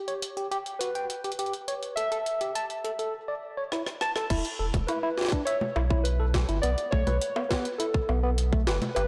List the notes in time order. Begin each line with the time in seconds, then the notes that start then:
Already playing: G4
0.08 C#5, closed hi-hat
0.22 closed hi-hat
0.37 G4, closed hi-hat
0.52 G4, closed hi-hat
0.66 closed hi-hat
0.79 F#4 B4, closed hi-hat
0.95 G5, closed hi-hat
1.10 closed hi-hat
1.24 G4, closed hi-hat
1.32 closed hi-hat
1.39 G4, closed hi-hat
1.46 closed hi-hat
1.53 closed hi-hat
1.68 C#5, closed hi-hat
1.83 closed hi-hat
1.96 A4 E5, closed hi-hat
2.12 A4, closed hi-hat
2.26 closed hi-hat
2.41 G4, closed hi-hat
2.55 A5, closed hi-hat
2.70 closed hi-hat
2.85 A4, closed hi-hat
2.99 A4, closed hi-hat
3.28 D5
3.57 C#5
3.72 E4, cross-stick
3.86 cross-stick
4.01 A5, cross-stick
4.16 A4, cross-stick
4.30 E1 E4, kick, closed hi-hat, crash
4.45 closed hi-hat
4.59 E1 A4
4.74 E1, kick, closed hi-hat, low conga
4.87 E4 B4, closed hi-hat, high bongo
5.03 E4
5.18 snare
5.21 snare
5.25 snare
5.29 D4, kick, snare, closed hi-hat
5.45 C#5 E5, closed hi-hat
5.61 low conga
5.76 B1 E4, high bongo
5.90 E4, kick
6.04 B4, closed hi-hat
6.20 A4
6.34 kick, snare, low conga
6.49 G1 E4, closed hi-hat
6.62 B1 B3 D5, closed hi-hat
6.78 closed hi-hat
6.91 B1 A3 C#5, kick
7.07 B1 B4, closed hi-hat, low conga
7.21 closed hi-hat
7.36 B3, high bongo
7.49 B3 B4, kick, snare
7.65 closed hi-hat
7.78 E4 A4, closed hi-hat
7.94 kick
8.09 B1 B3, high bongo
8.23 B3
8.38 closed hi-hat
8.53 A3, kick
8.67 F#1 B4, snare
8.82 closed hi-hat, low conga
8.95 G1 G4 B4, closed hi-hat, high bongo